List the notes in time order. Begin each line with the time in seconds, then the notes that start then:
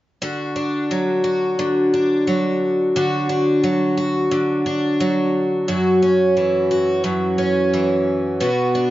0.22 D3 F#4
0.56 D4
0.91 F#3
1.24 F#4
1.59 D3
1.94 D4
2.27 F#3
2.96 D3 F#4
3.29 D4
3.64 F#3
3.98 F#4
4.31 D3
4.66 D4
5.00 F#3
5.68 F#2 F#4
6.02 C#4
6.37 E3
6.71 F#4
7.04 F#2
7.38 C#4
7.73 E3
8.40 B2 F#4
8.75 D4